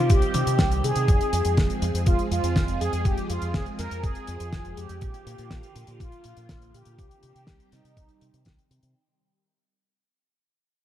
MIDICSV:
0, 0, Header, 1, 5, 480
1, 0, Start_track
1, 0, Tempo, 491803
1, 1056, Time_signature, 4, 2, 24, 8
1, 10588, End_track
2, 0, Start_track
2, 0, Title_t, "Analog polysynth"
2, 0, Program_c, 0, 90
2, 0, Note_on_c, 0, 65, 97
2, 96, Note_on_c, 0, 67, 102
2, 103, Note_off_c, 0, 65, 0
2, 817, Note_on_c, 0, 68, 111
2, 838, Note_off_c, 0, 67, 0
2, 1977, Note_off_c, 0, 68, 0
2, 2017, Note_on_c, 0, 65, 92
2, 2125, Note_off_c, 0, 65, 0
2, 2257, Note_on_c, 0, 65, 100
2, 2736, Note_on_c, 0, 68, 97
2, 2751, Note_off_c, 0, 65, 0
2, 2975, Note_on_c, 0, 67, 96
2, 2983, Note_off_c, 0, 68, 0
2, 3215, Note_on_c, 0, 65, 84
2, 3223, Note_off_c, 0, 67, 0
2, 3456, Note_on_c, 0, 68, 94
2, 3463, Note_off_c, 0, 65, 0
2, 3564, Note_off_c, 0, 68, 0
2, 3696, Note_on_c, 0, 70, 95
2, 3919, Note_off_c, 0, 70, 0
2, 3935, Note_on_c, 0, 68, 103
2, 4656, Note_on_c, 0, 67, 106
2, 4677, Note_off_c, 0, 68, 0
2, 5857, Note_on_c, 0, 65, 93
2, 5892, Note_off_c, 0, 67, 0
2, 6080, Note_off_c, 0, 65, 0
2, 6097, Note_on_c, 0, 65, 93
2, 6575, Note_on_c, 0, 67, 110
2, 6591, Note_off_c, 0, 65, 0
2, 7538, Note_on_c, 0, 63, 89
2, 7564, Note_off_c, 0, 67, 0
2, 8458, Note_off_c, 0, 63, 0
2, 10588, End_track
3, 0, Start_track
3, 0, Title_t, "String machine"
3, 0, Program_c, 1, 50
3, 0, Note_on_c, 1, 51, 78
3, 0, Note_on_c, 1, 55, 73
3, 0, Note_on_c, 1, 60, 72
3, 0, Note_on_c, 1, 67, 88
3, 1037, Note_off_c, 1, 51, 0
3, 1037, Note_off_c, 1, 55, 0
3, 1037, Note_off_c, 1, 60, 0
3, 1037, Note_off_c, 1, 67, 0
3, 1057, Note_on_c, 1, 53, 80
3, 1057, Note_on_c, 1, 56, 71
3, 1057, Note_on_c, 1, 60, 73
3, 1057, Note_on_c, 1, 68, 86
3, 4858, Note_off_c, 1, 56, 0
3, 4858, Note_off_c, 1, 60, 0
3, 4858, Note_off_c, 1, 68, 0
3, 4896, Note_on_c, 1, 50, 78
3, 4896, Note_on_c, 1, 58, 75
3, 4896, Note_on_c, 1, 65, 83
3, 6777, Note_off_c, 1, 53, 0
3, 6797, Note_off_c, 1, 50, 0
3, 6797, Note_off_c, 1, 58, 0
3, 6797, Note_off_c, 1, 65, 0
3, 6817, Note_on_c, 1, 67, 84
3, 6818, Note_on_c, 1, 55, 73
3, 6818, Note_on_c, 1, 60, 73
3, 6819, Note_on_c, 1, 51, 76
3, 8717, Note_off_c, 1, 67, 0
3, 8718, Note_off_c, 1, 51, 0
3, 8718, Note_off_c, 1, 55, 0
3, 8718, Note_off_c, 1, 60, 0
3, 10588, End_track
4, 0, Start_track
4, 0, Title_t, "Fingered electric bass"
4, 0, Program_c, 2, 33
4, 97, Note_on_c, 2, 36, 76
4, 198, Note_off_c, 2, 36, 0
4, 336, Note_on_c, 2, 48, 74
4, 438, Note_off_c, 2, 48, 0
4, 456, Note_on_c, 2, 48, 81
4, 558, Note_off_c, 2, 48, 0
4, 577, Note_on_c, 2, 36, 84
4, 781, Note_off_c, 2, 36, 0
4, 816, Note_on_c, 2, 48, 80
4, 918, Note_off_c, 2, 48, 0
4, 936, Note_on_c, 2, 48, 72
4, 1038, Note_off_c, 2, 48, 0
4, 1056, Note_on_c, 2, 29, 94
4, 1158, Note_off_c, 2, 29, 0
4, 1295, Note_on_c, 2, 41, 80
4, 1398, Note_off_c, 2, 41, 0
4, 1416, Note_on_c, 2, 41, 86
4, 1518, Note_off_c, 2, 41, 0
4, 1537, Note_on_c, 2, 29, 80
4, 1638, Note_off_c, 2, 29, 0
4, 1776, Note_on_c, 2, 41, 99
4, 1878, Note_off_c, 2, 41, 0
4, 1895, Note_on_c, 2, 41, 82
4, 1998, Note_off_c, 2, 41, 0
4, 2016, Note_on_c, 2, 29, 79
4, 2118, Note_off_c, 2, 29, 0
4, 2257, Note_on_c, 2, 41, 74
4, 2358, Note_off_c, 2, 41, 0
4, 2376, Note_on_c, 2, 41, 81
4, 2478, Note_off_c, 2, 41, 0
4, 2497, Note_on_c, 2, 29, 80
4, 2700, Note_off_c, 2, 29, 0
4, 2737, Note_on_c, 2, 41, 86
4, 2839, Note_off_c, 2, 41, 0
4, 2857, Note_on_c, 2, 41, 76
4, 2959, Note_off_c, 2, 41, 0
4, 2977, Note_on_c, 2, 29, 86
4, 3079, Note_off_c, 2, 29, 0
4, 3217, Note_on_c, 2, 41, 76
4, 3318, Note_off_c, 2, 41, 0
4, 3337, Note_on_c, 2, 41, 86
4, 3438, Note_off_c, 2, 41, 0
4, 3458, Note_on_c, 2, 29, 81
4, 3559, Note_off_c, 2, 29, 0
4, 3698, Note_on_c, 2, 41, 97
4, 3799, Note_off_c, 2, 41, 0
4, 3817, Note_on_c, 2, 41, 76
4, 3919, Note_off_c, 2, 41, 0
4, 3937, Note_on_c, 2, 29, 76
4, 4039, Note_off_c, 2, 29, 0
4, 4177, Note_on_c, 2, 41, 75
4, 4278, Note_off_c, 2, 41, 0
4, 4297, Note_on_c, 2, 41, 84
4, 4399, Note_off_c, 2, 41, 0
4, 4417, Note_on_c, 2, 29, 82
4, 4621, Note_off_c, 2, 29, 0
4, 4658, Note_on_c, 2, 41, 81
4, 4759, Note_off_c, 2, 41, 0
4, 4778, Note_on_c, 2, 41, 77
4, 4879, Note_off_c, 2, 41, 0
4, 4897, Note_on_c, 2, 34, 88
4, 4999, Note_off_c, 2, 34, 0
4, 5137, Note_on_c, 2, 46, 78
4, 5238, Note_off_c, 2, 46, 0
4, 5258, Note_on_c, 2, 46, 82
4, 5359, Note_off_c, 2, 46, 0
4, 5377, Note_on_c, 2, 34, 76
4, 5479, Note_off_c, 2, 34, 0
4, 5617, Note_on_c, 2, 46, 92
4, 5719, Note_off_c, 2, 46, 0
4, 5736, Note_on_c, 2, 46, 76
4, 5838, Note_off_c, 2, 46, 0
4, 5857, Note_on_c, 2, 34, 80
4, 5958, Note_off_c, 2, 34, 0
4, 6097, Note_on_c, 2, 46, 74
4, 6199, Note_off_c, 2, 46, 0
4, 6217, Note_on_c, 2, 46, 84
4, 6318, Note_off_c, 2, 46, 0
4, 6337, Note_on_c, 2, 34, 85
4, 6540, Note_off_c, 2, 34, 0
4, 6576, Note_on_c, 2, 46, 84
4, 6678, Note_off_c, 2, 46, 0
4, 6697, Note_on_c, 2, 46, 72
4, 6798, Note_off_c, 2, 46, 0
4, 6817, Note_on_c, 2, 36, 91
4, 6918, Note_off_c, 2, 36, 0
4, 7057, Note_on_c, 2, 48, 76
4, 7158, Note_off_c, 2, 48, 0
4, 7177, Note_on_c, 2, 48, 79
4, 7279, Note_off_c, 2, 48, 0
4, 7297, Note_on_c, 2, 36, 78
4, 7398, Note_off_c, 2, 36, 0
4, 7538, Note_on_c, 2, 48, 96
4, 7639, Note_off_c, 2, 48, 0
4, 7657, Note_on_c, 2, 48, 75
4, 7759, Note_off_c, 2, 48, 0
4, 7777, Note_on_c, 2, 36, 74
4, 7878, Note_off_c, 2, 36, 0
4, 8017, Note_on_c, 2, 48, 74
4, 8119, Note_off_c, 2, 48, 0
4, 8136, Note_on_c, 2, 48, 94
4, 8238, Note_off_c, 2, 48, 0
4, 8256, Note_on_c, 2, 36, 83
4, 8358, Note_off_c, 2, 36, 0
4, 8496, Note_on_c, 2, 48, 76
4, 8598, Note_off_c, 2, 48, 0
4, 8617, Note_on_c, 2, 48, 86
4, 8718, Note_off_c, 2, 48, 0
4, 10588, End_track
5, 0, Start_track
5, 0, Title_t, "Drums"
5, 94, Note_on_c, 9, 42, 69
5, 97, Note_on_c, 9, 36, 123
5, 191, Note_off_c, 9, 42, 0
5, 194, Note_off_c, 9, 36, 0
5, 215, Note_on_c, 9, 42, 44
5, 312, Note_off_c, 9, 42, 0
5, 333, Note_on_c, 9, 42, 88
5, 338, Note_on_c, 9, 48, 58
5, 430, Note_off_c, 9, 42, 0
5, 435, Note_off_c, 9, 48, 0
5, 459, Note_on_c, 9, 42, 64
5, 556, Note_off_c, 9, 42, 0
5, 573, Note_on_c, 9, 42, 58
5, 574, Note_on_c, 9, 38, 118
5, 577, Note_on_c, 9, 36, 102
5, 670, Note_off_c, 9, 42, 0
5, 671, Note_off_c, 9, 38, 0
5, 674, Note_off_c, 9, 36, 0
5, 698, Note_on_c, 9, 42, 47
5, 795, Note_off_c, 9, 42, 0
5, 822, Note_on_c, 9, 42, 90
5, 920, Note_off_c, 9, 42, 0
5, 933, Note_on_c, 9, 42, 67
5, 1030, Note_off_c, 9, 42, 0
5, 1056, Note_on_c, 9, 36, 108
5, 1058, Note_on_c, 9, 42, 59
5, 1154, Note_off_c, 9, 36, 0
5, 1156, Note_off_c, 9, 42, 0
5, 1179, Note_on_c, 9, 42, 45
5, 1277, Note_off_c, 9, 42, 0
5, 1297, Note_on_c, 9, 42, 94
5, 1395, Note_off_c, 9, 42, 0
5, 1412, Note_on_c, 9, 42, 61
5, 1510, Note_off_c, 9, 42, 0
5, 1537, Note_on_c, 9, 36, 99
5, 1538, Note_on_c, 9, 42, 56
5, 1543, Note_on_c, 9, 38, 107
5, 1634, Note_off_c, 9, 36, 0
5, 1635, Note_off_c, 9, 42, 0
5, 1641, Note_off_c, 9, 38, 0
5, 1659, Note_on_c, 9, 42, 42
5, 1756, Note_off_c, 9, 42, 0
5, 1777, Note_on_c, 9, 42, 81
5, 1875, Note_off_c, 9, 42, 0
5, 1902, Note_on_c, 9, 42, 66
5, 2000, Note_off_c, 9, 42, 0
5, 2014, Note_on_c, 9, 42, 64
5, 2017, Note_on_c, 9, 36, 109
5, 2112, Note_off_c, 9, 42, 0
5, 2114, Note_off_c, 9, 36, 0
5, 2136, Note_on_c, 9, 42, 43
5, 2234, Note_off_c, 9, 42, 0
5, 2260, Note_on_c, 9, 42, 86
5, 2357, Note_off_c, 9, 42, 0
5, 2379, Note_on_c, 9, 42, 61
5, 2477, Note_off_c, 9, 42, 0
5, 2497, Note_on_c, 9, 36, 101
5, 2502, Note_on_c, 9, 38, 111
5, 2505, Note_on_c, 9, 42, 59
5, 2595, Note_off_c, 9, 36, 0
5, 2600, Note_off_c, 9, 38, 0
5, 2603, Note_off_c, 9, 42, 0
5, 2617, Note_on_c, 9, 42, 45
5, 2715, Note_off_c, 9, 42, 0
5, 2745, Note_on_c, 9, 42, 84
5, 2842, Note_off_c, 9, 42, 0
5, 2859, Note_on_c, 9, 42, 60
5, 2956, Note_off_c, 9, 42, 0
5, 2977, Note_on_c, 9, 36, 105
5, 2978, Note_on_c, 9, 42, 55
5, 3075, Note_off_c, 9, 36, 0
5, 3075, Note_off_c, 9, 42, 0
5, 3099, Note_on_c, 9, 42, 42
5, 3197, Note_off_c, 9, 42, 0
5, 3217, Note_on_c, 9, 42, 101
5, 3315, Note_off_c, 9, 42, 0
5, 3335, Note_on_c, 9, 42, 58
5, 3432, Note_off_c, 9, 42, 0
5, 3456, Note_on_c, 9, 38, 115
5, 3457, Note_on_c, 9, 36, 94
5, 3458, Note_on_c, 9, 42, 56
5, 3554, Note_off_c, 9, 38, 0
5, 3555, Note_off_c, 9, 36, 0
5, 3556, Note_off_c, 9, 42, 0
5, 3574, Note_on_c, 9, 42, 40
5, 3672, Note_off_c, 9, 42, 0
5, 3697, Note_on_c, 9, 42, 91
5, 3702, Note_on_c, 9, 38, 30
5, 3794, Note_off_c, 9, 42, 0
5, 3799, Note_off_c, 9, 38, 0
5, 3819, Note_on_c, 9, 42, 61
5, 3917, Note_off_c, 9, 42, 0
5, 3938, Note_on_c, 9, 36, 107
5, 3939, Note_on_c, 9, 42, 56
5, 4035, Note_off_c, 9, 36, 0
5, 4036, Note_off_c, 9, 42, 0
5, 4051, Note_on_c, 9, 42, 40
5, 4149, Note_off_c, 9, 42, 0
5, 4171, Note_on_c, 9, 42, 92
5, 4269, Note_off_c, 9, 42, 0
5, 4296, Note_on_c, 9, 42, 64
5, 4393, Note_off_c, 9, 42, 0
5, 4416, Note_on_c, 9, 38, 110
5, 4418, Note_on_c, 9, 36, 92
5, 4419, Note_on_c, 9, 42, 60
5, 4514, Note_off_c, 9, 38, 0
5, 4515, Note_off_c, 9, 36, 0
5, 4516, Note_off_c, 9, 42, 0
5, 4536, Note_on_c, 9, 42, 41
5, 4634, Note_off_c, 9, 42, 0
5, 4659, Note_on_c, 9, 42, 91
5, 4756, Note_off_c, 9, 42, 0
5, 4775, Note_on_c, 9, 42, 64
5, 4873, Note_off_c, 9, 42, 0
5, 4893, Note_on_c, 9, 42, 60
5, 4898, Note_on_c, 9, 36, 102
5, 4990, Note_off_c, 9, 42, 0
5, 4995, Note_off_c, 9, 36, 0
5, 5017, Note_on_c, 9, 42, 43
5, 5114, Note_off_c, 9, 42, 0
5, 5141, Note_on_c, 9, 42, 93
5, 5239, Note_off_c, 9, 42, 0
5, 5255, Note_on_c, 9, 42, 55
5, 5352, Note_off_c, 9, 42, 0
5, 5374, Note_on_c, 9, 38, 108
5, 5375, Note_on_c, 9, 42, 56
5, 5377, Note_on_c, 9, 36, 93
5, 5471, Note_off_c, 9, 38, 0
5, 5472, Note_off_c, 9, 42, 0
5, 5475, Note_off_c, 9, 36, 0
5, 5496, Note_on_c, 9, 42, 47
5, 5593, Note_off_c, 9, 42, 0
5, 5618, Note_on_c, 9, 42, 91
5, 5715, Note_off_c, 9, 42, 0
5, 5730, Note_on_c, 9, 42, 64
5, 5828, Note_off_c, 9, 42, 0
5, 5857, Note_on_c, 9, 36, 104
5, 5862, Note_on_c, 9, 42, 61
5, 5955, Note_off_c, 9, 36, 0
5, 5959, Note_off_c, 9, 42, 0
5, 5974, Note_on_c, 9, 42, 38
5, 6072, Note_off_c, 9, 42, 0
5, 6088, Note_on_c, 9, 42, 91
5, 6186, Note_off_c, 9, 42, 0
5, 6214, Note_on_c, 9, 42, 56
5, 6311, Note_off_c, 9, 42, 0
5, 6334, Note_on_c, 9, 42, 62
5, 6335, Note_on_c, 9, 38, 92
5, 6337, Note_on_c, 9, 36, 93
5, 6432, Note_off_c, 9, 42, 0
5, 6433, Note_off_c, 9, 38, 0
5, 6435, Note_off_c, 9, 36, 0
5, 6458, Note_on_c, 9, 42, 45
5, 6555, Note_off_c, 9, 42, 0
5, 6582, Note_on_c, 9, 42, 91
5, 6680, Note_off_c, 9, 42, 0
5, 6690, Note_on_c, 9, 42, 62
5, 6787, Note_off_c, 9, 42, 0
5, 6817, Note_on_c, 9, 36, 100
5, 6819, Note_on_c, 9, 42, 59
5, 6915, Note_off_c, 9, 36, 0
5, 6917, Note_off_c, 9, 42, 0
5, 6940, Note_on_c, 9, 42, 43
5, 7037, Note_off_c, 9, 42, 0
5, 7054, Note_on_c, 9, 42, 91
5, 7152, Note_off_c, 9, 42, 0
5, 7181, Note_on_c, 9, 42, 54
5, 7279, Note_off_c, 9, 42, 0
5, 7290, Note_on_c, 9, 38, 98
5, 7297, Note_on_c, 9, 36, 91
5, 7306, Note_on_c, 9, 42, 55
5, 7387, Note_off_c, 9, 38, 0
5, 7394, Note_off_c, 9, 36, 0
5, 7404, Note_off_c, 9, 42, 0
5, 7416, Note_on_c, 9, 42, 41
5, 7513, Note_off_c, 9, 42, 0
5, 7537, Note_on_c, 9, 38, 29
5, 7537, Note_on_c, 9, 42, 86
5, 7634, Note_off_c, 9, 38, 0
5, 7635, Note_off_c, 9, 42, 0
5, 7662, Note_on_c, 9, 42, 61
5, 7760, Note_off_c, 9, 42, 0
5, 7777, Note_on_c, 9, 36, 110
5, 7779, Note_on_c, 9, 42, 63
5, 7874, Note_off_c, 9, 36, 0
5, 7877, Note_off_c, 9, 42, 0
5, 7892, Note_on_c, 9, 42, 38
5, 7989, Note_off_c, 9, 42, 0
5, 8016, Note_on_c, 9, 42, 82
5, 8114, Note_off_c, 9, 42, 0
5, 8138, Note_on_c, 9, 42, 59
5, 8236, Note_off_c, 9, 42, 0
5, 8247, Note_on_c, 9, 42, 55
5, 8257, Note_on_c, 9, 36, 93
5, 8267, Note_on_c, 9, 38, 92
5, 8345, Note_off_c, 9, 42, 0
5, 8354, Note_off_c, 9, 36, 0
5, 8364, Note_off_c, 9, 38, 0
5, 8380, Note_on_c, 9, 42, 44
5, 8477, Note_off_c, 9, 42, 0
5, 8500, Note_on_c, 9, 42, 89
5, 8598, Note_off_c, 9, 42, 0
5, 8616, Note_on_c, 9, 42, 59
5, 8713, Note_off_c, 9, 42, 0
5, 10588, End_track
0, 0, End_of_file